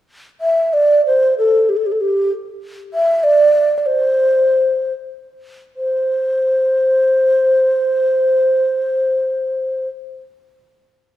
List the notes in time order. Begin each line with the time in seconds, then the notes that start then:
0.41 E5
0.73 D5
1.06 C5
1.38 A4
1.69 G4
1.76 A4
1.86 G4
1.92 A4
2.01 G4
2.94 E5
3.23 D5
3.78 D5
3.86 C5
5.76 C5